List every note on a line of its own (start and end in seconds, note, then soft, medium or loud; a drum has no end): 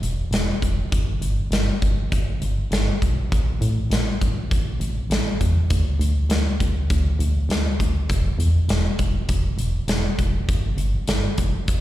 0.02 0.22 E1 medium
0.02 closed hi-hat medium
0.31 0.52 E1 medium
0.31 snare loud
0.31 closed hi-hat medium
0.62 0.82 E1 medium
0.62 kick medium
0.62 closed hi-hat medium
0.92 1.12 G1 medium
0.92 kick loud
0.92 closed hi-hat medium
1.22 1.42 G1 medium
1.22 closed hi-hat medium
1.51 1.71 G1 medium
1.51 snare medium
1.51 closed hi-hat medium
1.82 2.02 G1 medium
1.82 kick medium
1.82 closed hi-hat medium
2.12 2.32 G1 medium
2.12 kick medium
2.12 closed hi-hat medium
2.42 2.62 G1 medium
2.42 closed hi-hat medium
2.71 2.91 G1 medium
2.71 snare loud
2.71 closed hi-hat medium
3.02 3.22 B1 medium
3.02 kick medium
3.02 closed hi-hat medium
3.32 3.52 A1 medium
3.32 kick loud
3.32 closed hi-hat medium
3.61 3.81 A2 medium
3.61 closed hi-hat medium
3.91 4.11 A1 medium
3.91 snare loud
3.91 closed hi-hat medium
4.21 4.41 A1 medium
4.21 kick medium
4.21 closed hi-hat medium
4.51 4.71 A1 medium
4.51 kick medium
4.51 closed hi-hat medium
4.80 5.01 A1 medium
4.80 closed hi-hat medium
5.10 5.30 A1 medium
5.10 snare medium
5.10 closed hi-hat medium
5.41 5.61 E2 medium
5.41 kick medium
5.41 closed hi-hat medium
5.70 5.91 D2 medium
5.70 kick loud
5.70 closed hi-hat medium
6.00 6.20 D2 medium
6.00 closed hi-hat medium
6.29 6.50 D2 medium
6.29 snare loud
6.29 closed hi-hat medium
6.60 6.80 D2 medium
6.60 kick medium
6.60 closed hi-hat medium
6.90 7.10 D2 medium
6.90 kick loud
6.90 closed hi-hat medium
7.19 7.40 D2 medium
7.19 closed hi-hat medium
7.49 7.69 D2 medium
7.49 snare medium
7.49 closed hi-hat medium
7.80 8.00 D2 medium
7.80 kick medium
7.80 closed hi-hat medium
8.09 8.30 E1 medium
8.09 kick loud
8.09 closed hi-hat medium
8.39 8.59 E2 medium
8.39 closed hi-hat medium
8.69 8.89 E1 medium
8.69 snare loud
8.69 closed hi-hat medium
8.99 9.19 E1 medium
8.99 kick medium
8.99 closed hi-hat medium
9.29 9.49 E1 medium
9.29 kick medium
9.29 closed hi-hat medium
9.58 9.78 E1 medium
9.58 closed hi-hat medium
9.88 10.08 E1 medium
9.88 snare loud
9.88 closed hi-hat medium
10.19 10.39 E1 medium
10.19 kick medium
10.19 closed hi-hat medium
10.49 10.69 G1 medium
10.49 kick loud
10.49 closed hi-hat medium
10.78 10.98 G1 medium
10.78 closed hi-hat medium
11.08 11.28 G1 medium
11.08 snare loud
11.08 closed hi-hat medium
11.38 11.69 F1 medium
11.38 kick medium
11.38 closed hi-hat medium
11.68 11.81 E1 medium
11.68 kick loud
11.68 closed hi-hat medium